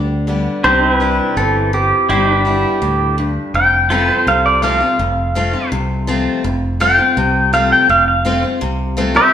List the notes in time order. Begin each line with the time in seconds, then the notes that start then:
Already playing: D2 D3 D4 G4 B4
0.27 D3 G3 B3 G4
0.64 C2 C3 C4 D4 G4 C5
0.83 C5
0.89 E4
0.94 B4
1.00 E3 G3 D4 E4
1.36 G1 E3 A4
1.73 F3 G4
2.09 G1 G3 E4 G4 C5
2.31 D4 B4
2.45 G3 B3 E4
2.82 D2 A2
3.18 G2
3.54 F1 F2 G5
3.90 F3 A3 C4 F4 A4 B4
4.08 C4 F4 C5
4.27 C2 C3 F5
4.46 D5
4.62 F3 A3 C4 F4 F5
4.80 C4 F4
4.99 F1 F2
5.35 F3 A3 C4 F4
5.53 C4 F4
5.72 C2 C3
6.07 F3 A3 C4 F4
6.44 F1 F2
6.80 F3 A3 C4 F4 G5
6.98 C4 F4
7.17 C2 C3
7.53 F3 A3 C4 F4 F5
7.72 G5
7.89 F1 F2 F5
8.08 F5
8.25 F3 A3 C4 F4
8.43 C4 F4
8.61 C2 C3
8.97 F3 A3 C4 F4
9.15 C4 F4 C5 E5